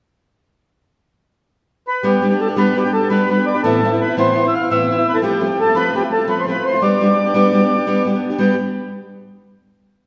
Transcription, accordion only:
1.88 B4
2.04 G4
2.40 A4
2.58 B4
2.78 G4
2.93 A4
3.11 B4
3.31 B4
3.47 D5
3.54 B4
3.63 A4
4.01 B4
4.20 C5
4.48 E5
4.55 F5
4.71 E5
5.09 B4
5.15 A4
5.23 G4
5.60 A4
5.76 B4
5.96 G4
6.12 A4
6.30 B4
6.40 C5
6.49 B4
6.66 C5
6.82 D5
8.39 G5

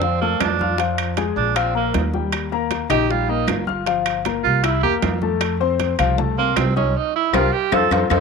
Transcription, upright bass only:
Already playing: F2
0.40 F2
1.36 A#1
1.94 D#2
2.90 A#1
3.48 G1
4.45 C2
4.83 E2
5.03 F2
5.99 C2
6.57 C2
7.33 C2
7.72 F2
7.91 F2
8.11 F2

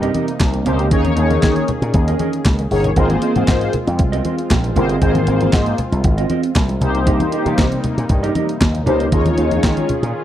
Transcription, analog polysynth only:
0.66 A#3 D#4 G4 C5
0.92 A#3 D#4 G#4 C#5
2.71 A#3 D#4 G#4 C#5
2.96 A#3 F4 G#4 C5
4.76 A#3 F4 G#4 C5
5.01 A#3 F4 G#4 C5
6.81 A#3 D#4 G4 C5
8.86 A#3 D#4 G4 C5
9.12 G#3 D#4 F4 C#5

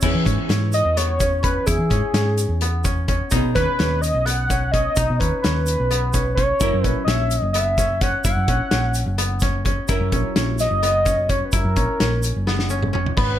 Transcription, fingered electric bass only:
0.03 E2
0.15 E3
0.26 G#2
0.49 G#2
0.85 E2
1.68 E2
1.78 E3
1.91 G#2
2.14 G#2
2.49 E2
3.32 B1
3.43 B2
3.56 D#2
3.80 D#2
4.14 B1
4.97 B1
5.10 B2
5.21 D#2
5.45 D#2
5.80 B1
6.61 F#1
6.73 F#2
6.84 A#1
7.07 A#1
7.42 F#1
8.25 F#1
8.37 F#2
8.48 A#1
8.72 A#1
9.06 F#1
9.89 F#1
10.00 F#2
10.13 A#1
10.36 A#1
10.71 F#1
11.53 F#1
11.65 F#2
11.76 A#1
12.00 A#1
12.36 F#1
13.18 G#1

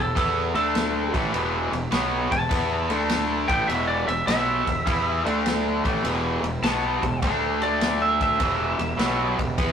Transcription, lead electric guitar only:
Already playing: A4
0.17 A4
0.55 A4
2.32 A5
3.48 G5
3.68 E5
3.88 D5
4.08 E5
4.27 E5
6.64 A5
7.22 E5
7.63 D5
8.02 E5
8.23 E5

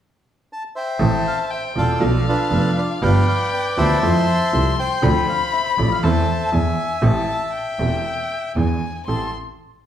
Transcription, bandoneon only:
0.53 A5
0.76 C5 E5 G5
1.27 F5
1.53 E5
1.77 F4 A4 D5
2.28 D4 F4 B4
2.78 D5
3.02 B4 D5 F5
3.28 F5
3.54 G5
3.78 C5 E5 A5
4.54 A5
4.79 C5 G5
5.29 F5
5.53 E5
5.78 D5
5.92 F5
6.04 A4 C5 E5
9.09 A5

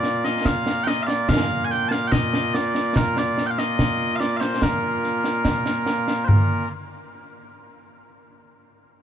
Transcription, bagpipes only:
Already playing: A#2 A#3 F4 D5
0.25 D#5
0.46 F5
0.84 D#5 G5
1.03 F5
1.07 D5
1.29 F5
1.65 G#5
1.71 G5
1.88 F5 A5
2.07 G5
2.12 D#5
2.55 D5
2.96 A#4
3.18 D5
3.46 G5
3.50 F5
3.59 D#5
4.16 F5
4.20 D5
4.37 C5 F5
4.63 A#4
6.25 A#4 C5

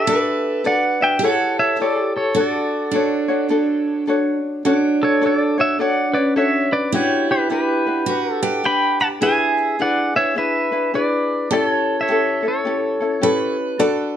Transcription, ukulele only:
0.07 D4 F#4 A4 D5
0.64 D4 F#4 A4 D5
1.01 D4 F#4 D5
1.23 E4 G4 A4 C#5
1.80 E4 G4 A4 C#5
2.35 D4 F#4 A4
2.94 D4 F#4 A4 C#5
3.28 D4 F#4 C#5
3.50 D4 F#4 A4
4.07 D4 F#4 A4 C#5
4.65 D4 F#4 A4 C#5
5.21 D4 F#4 A4 C#5
5.58 D4 F#4 C#5
5.79 D4 F#4 A4 C#5
6.15 D4 F#4 C#5
6.36 D4 F#4 A4 C#5
6.93 D4 F#4 G4 B4
7.50 D4 F#4 G4 B4
7.87 D4 F#4 B4
8.08 D4 F#4 G4 B4
8.42 D4 F#4 B4
8.64 D4 G4 B4
9.21 D4 E4 G#4 B4
9.80 D4 E4 G#4 B4
10.15 D4 E4 B4
10.36 D4 E4 G#4 B4
10.72 D4 E4 B4
10.94 D4 E4 G#4 B4
11.51 C#4 E4 G4 A4
12.09 C#4 E4 G4 A4
12.43 C#4 E4 A4
12.65 C#4 E4 G4 A4
13.00 C#4 E4 A4
13.21 C#4 E4 G4 A4
13.79 D4 F#4 A4 D5

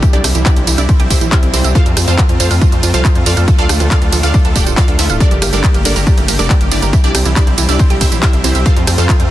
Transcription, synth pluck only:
0.02 G4
0.13 D4 E4 G4 D5
0.24 G4
0.35 G4
0.45 D4 E4 G4 D5
0.56 G4
0.67 G4
0.78 D4 E4 G4 D5
0.89 G4
1.00 G4
1.10 E4 G4 C5 E5
1.21 G4
1.32 E4 G4 C5 E5
1.43 G4
1.54 C4 E4 G4 C5
1.65 G4
1.75 F4 A4 C5 F5
1.86 F4
1.97 F4
2.08 F4 A4 C5 F5
2.29 F4
2.40 F4 A4 C5 F5
2.51 F4
2.62 F4
2.83 F4
2.94 F4 A4 C5 F5
3.05 F4
3.16 F4
3.26 F4 A4 D5 F5
3.37 A4
3.48 A4
3.59 F4 A4 D5 F5
3.69 A4
3.80 A4
3.91 F4 A4 D5 F5
4.02 A4
4.12 A4
4.23 F4 A4 D5 F5
4.34 A4
4.45 A4
4.56 G4 A4 D5 G5
4.67 A4
4.78 F4 A4 D5 F5
4.88 A4
4.99 E4 F4 A4 E5
5.10 A4
5.21 D4 A4 A#4 D5
5.32 G4
5.42 G4
5.53 D4 A4 A#4 D5
5.64 G4
5.75 G4
5.85 D4 A4 A#4 D5
5.96 G4
6.07 G4
6.28 G4
6.39 D4 A4 A#4 D5
6.50 G4
6.61 G4
6.72 D4 E4 G4 D5
6.82 G4
6.93 G4
7.04 D4 E4 G4 D5
7.15 G4
7.26 G4
7.36 D4 E4 G4 D5
7.47 G4
7.58 G4
7.69 D4 E4 G4 D5
7.80 G4
7.90 G4
8.01 E4 G4 C5 E5
8.12 G4
8.23 E4 G4 C5 E5
8.34 G4
8.44 C4 E4 G4 C5
8.55 G4
8.66 F4 A4 C5 F5
8.77 F4
8.87 F4
8.98 F4 A4 C5 F5
9.09 F4
9.20 F4

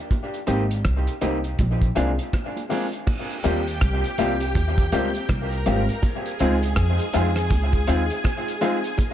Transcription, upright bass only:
0.48 G#1
0.85 C2
1.22 C2
1.59 A#1
1.97 C2
3.45 D#2
3.82 C2
4.18 C2
4.56 D#2
4.92 C#2
5.29 C2
5.67 G#1
6.41 C#2
6.78 F2
7.15 F2
7.51 C#2
7.89 D#2

